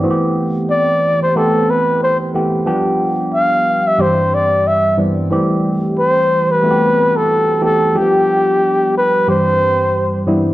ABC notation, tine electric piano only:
X:1
M:4/4
L:1/16
Q:"Swing 16ths" 1/4=91
K:Am
V:1 name="Tine electric piano"
[E,A,B,C^FG]6 z2 [E,A,B,CG]4- [E,A,B,CG] z [E,A,B,CG]2 | [F,G,B,DG]6 z2 [G,,E,G,CG]4- [G,,E,G,CG] z [G,,E,G,B,CD]2 | [E,G,A,CG]6 z2 [E,A,B,C^FG]4- [E,A,B,CFG] z [E,A,B,CG]2 | [F,G,A,B,DG]6 z2 [G,,E,G,CG]4- [G,,E,G,CG] z [G,,E,G,B,CE]2 |]